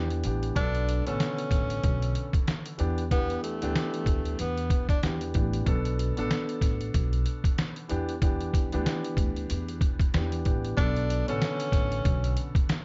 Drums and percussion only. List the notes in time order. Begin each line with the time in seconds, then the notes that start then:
0.10 closed hi-hat
0.24 closed hi-hat
0.43 closed hi-hat
0.56 kick, closed hi-hat
0.75 closed hi-hat
0.89 closed hi-hat
1.07 closed hi-hat
1.20 snare, closed hi-hat
1.38 closed hi-hat
1.51 kick, snare, closed hi-hat
1.70 closed hi-hat
1.83 kick, closed hi-hat
2.02 closed hi-hat
2.15 closed hi-hat
2.33 kick, closed hi-hat
2.48 snare, closed hi-hat
2.66 closed hi-hat
2.79 closed hi-hat
2.98 closed hi-hat
3.11 kick, closed hi-hat
3.30 closed hi-hat
3.44 closed hi-hat
3.62 closed hi-hat
3.75 snare, closed hi-hat
3.94 closed hi-hat
4.06 kick, closed hi-hat
4.25 closed hi-hat
4.39 closed hi-hat
4.58 closed hi-hat
4.70 kick, closed hi-hat
4.89 kick, closed hi-hat
5.03 snare, closed hi-hat
5.21 closed hi-hat
5.34 kick, closed hi-hat
5.53 closed hi-hat
5.66 kick, closed hi-hat
5.85 closed hi-hat
5.99 closed hi-hat
6.17 closed hi-hat
6.31 snare, closed hi-hat
6.49 closed hi-hat
6.61 kick, snare, closed hi-hat
6.81 closed hi-hat
6.94 kick, closed hi-hat
7.13 closed hi-hat
7.26 closed hi-hat
7.44 kick, closed hi-hat
7.58 snare, closed hi-hat
7.76 closed hi-hat
7.89 closed hi-hat
8.09 closed hi-hat
8.22 kick, closed hi-hat
8.41 closed hi-hat
8.54 kick, closed hi-hat
8.72 closed hi-hat
8.86 snare, closed hi-hat
9.04 closed hi-hat
9.17 kick, closed hi-hat
9.36 closed hi-hat
9.50 closed hi-hat
9.69 closed hi-hat
9.81 kick, closed hi-hat
10.00 kick, closed hi-hat
10.14 snare, closed hi-hat
10.32 closed hi-hat
10.45 kick, closed hi-hat
10.65 closed hi-hat
10.77 kick, closed hi-hat
10.96 closed hi-hat
11.10 closed hi-hat
11.28 closed hi-hat
11.42 snare, closed hi-hat
11.60 closed hi-hat
11.72 kick, snare, closed hi-hat
11.92 closed hi-hat
12.05 kick, closed hi-hat
12.24 closed hi-hat
12.37 closed hi-hat
12.55 kick, closed hi-hat
12.69 snare, closed hi-hat